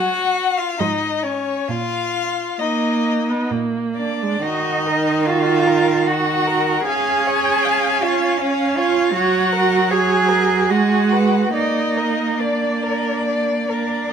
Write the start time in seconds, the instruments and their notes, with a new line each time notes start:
Already playing: viola F#3, violin F#4 F#5
0.58 violin F4 F5
0.79 cello G#2, viola F3, violin D#4 D#5
1.22 violin C#4 C#5
1.68 cello A#2, violin F4 F5
2.59 viola A#3, violin D#4 D#5
3.30 viola B3
3.51 cello A#2, viola A#3
3.96 cello D4, violin D5
4.22 viola G#3
4.42 viola D#3, cello D#4, violin F#4 D#5
4.86 violin A#4
5.26 cello F4, violin F#4 F5
5.67 violin A#4
6.06 violin F#4 F#5, cello F#4
6.46 violin A#4
6.86 viola C#4, cello G#4, violin F5 G#5
7.27 violin C#5
7.65 violin F5
8.02 cello F4, violin C#5 F5
8.40 cello C#4, violin C#5 F5
8.77 cello F4, violin C#5 F5
9.14 viola F#3, cello F#4, violin C#5 F#5
9.52 violin A#4
9.90 cello G#4, violin C#5 G#5
10.28 violin A#4
10.70 viola G#3, cello F#4, violin G#4 F#5
11.12 violin B4
11.54 viola A#3, cello D#4, violin D5 D#5
11.97 violin A#4
12.39 cello D4, violin D5
12.83 violin A#4
13.26 violin D5
13.68 cello D4, violin A#4 D5
14.10 violin D#5